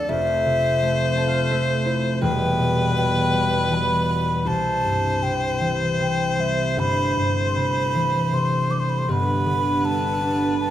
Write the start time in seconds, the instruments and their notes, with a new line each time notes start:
Already playing: harp D2 D3 A3 D4 F4 A4, harmonium F3, viola A4, flute D5
0.08 harp F1 F2, harmonium F2 A3, viola C5, flute E5
0.46 harp C3
0.82 harp A3
1.16 harp C4 A5
1.27 harp F5
1.50 harp A3 E5
1.86 harp E4 C5
2.21 harp E1 E2, harmonium E2 B2 G3, viola B4, flute G5
2.58 harp B2
2.96 harp E3, flute G5
3.33 harp G3
3.71 harp E3, flute B5
4.09 harp B3
4.45 harp C2, harmonium C3 C4 E4, viola C5, flute A5
4.84 harp G2
5.22 harp C3, flute G5
5.60 harp E3
6.00 harp C3, flute G5
6.38 harp G3, flute E5
6.76 harp G1 G2, harmonium A3, flute B5
7.17 harp G2
7.47 flute C6
7.56 harp C3, flute B5
7.95 harp E3
8.32 harp C3, flute C6
8.70 harp G3, flute D6
8.80 flute C6
8.89 flute B5
8.98 flute C6
9.07 harp G1 G2, harmonium G2 D3 B3, viola B4
9.12 flute B5
9.45 harp D3
9.82 harp B3, flute A5
10.20 harp D4
10.58 harp B3, flute A5